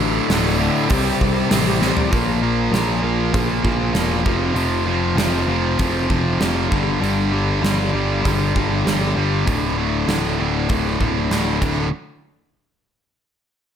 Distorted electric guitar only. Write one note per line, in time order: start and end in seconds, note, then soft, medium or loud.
0.00 0.28 D2 medium
0.00 0.28 A2 loud
0.00 0.29 D3 medium
0.29 0.57 D2 loud
0.29 0.58 A2 loud
0.29 0.59 D3 loud
0.59 0.88 D2 medium
0.59 0.88 A2 medium
0.59 0.89 D3 medium
0.89 1.49 C3 loud
0.89 1.49 G3 loud
0.89 1.50 C4 loud
1.50 1.79 C3 loud
1.50 1.80 G3 loud
1.50 1.80 C4 medium
1.80 2.09 C3 medium
1.80 2.10 G3 medium
1.80 2.10 C4 medium
2.10 2.41 A#2 medium
2.10 2.42 F3 medium
2.10 2.42 A#3 medium
2.42 2.71 A#2 medium
2.42 2.73 F3 medium
2.42 2.73 A#3 medium
2.72 3.01 A#2 medium
2.72 3.02 F3 medium
2.72 3.03 A#3 medium
3.02 3.32 A#2 medium
3.02 3.32 F3 medium
3.02 3.33 A#3 medium
3.33 3.62 A#2 medium
3.33 3.62 F3 loud
3.33 3.63 A#3 loud
3.63 3.92 A#2 medium
3.63 3.93 F3 medium
3.63 3.93 A#3 medium
3.93 4.23 A#2 medium
3.93 4.23 F3 medium
3.93 4.24 A#3 medium
4.24 4.53 F2 loud
4.24 4.54 C3 loud
4.24 4.54 F3 loud
4.54 4.84 F2 medium
4.54 4.85 C3 medium
4.54 4.86 F3 medium
4.85 5.15 F2 medium
4.85 5.15 C3 medium
4.85 5.16 F3 medium
5.16 5.47 F2 medium
5.16 5.48 C3 medium
5.16 5.48 F3 medium
5.48 5.77 F2 medium
5.48 5.77 C3 medium
5.48 5.78 F3 medium
5.78 6.07 F2 medium
5.78 6.08 C3 loud
5.78 6.09 F3 loud
6.09 6.38 F2 medium
6.09 6.39 C3 medium
6.09 6.40 F3 medium
6.40 6.68 F2 medium
6.40 6.69 C3 medium
6.40 6.69 F3 medium
6.69 6.99 G2 medium
6.69 6.99 D3 medium
6.69 7.00 G3 medium
7.00 7.30 G2 medium
7.00 7.31 D3 medium
7.00 7.32 G3 medium
7.31 7.61 G2 medium
7.31 7.62 D3 medium
7.31 7.63 G3 medium
7.63 7.93 G2 medium
7.63 7.93 D3 medium
7.63 7.94 G3 medium
7.94 8.24 G2 medium
7.94 8.24 D3 medium
7.94 8.24 G3 medium
8.25 8.55 G2 medium
8.25 8.55 D3 loud
8.25 8.55 G3 loud
8.56 8.85 G2 medium
8.56 8.86 D3 medium
8.56 8.86 G3 medium
8.86 9.15 G2 medium
8.86 9.16 D3 medium
8.86 9.17 G3 medium
9.16 9.45 G2 medium
9.16 9.45 D3 medium
9.16 9.46 G3 medium
9.47 9.76 D2 medium
9.47 9.77 A2 medium
9.47 9.77 D3 medium
9.77 10.06 D2 medium
9.77 10.06 A2 medium
9.77 10.07 D3 medium
10.07 10.38 D2 medium
10.07 10.39 A2 medium
10.07 10.39 D3 medium
10.40 10.68 D2 medium
10.40 10.69 A2 medium
10.40 10.69 D3 medium
10.70 10.99 D2 medium
10.70 11.00 A2 medium
10.70 11.00 D3 medium
11.01 11.30 D2 medium
11.01 11.31 A2 medium
11.01 11.31 D3 medium
11.31 11.61 D2 medium
11.31 11.62 A2 medium
11.31 11.62 D3 medium
11.62 11.86 D2 medium
11.62 11.87 A2 medium
11.62 11.87 D3 medium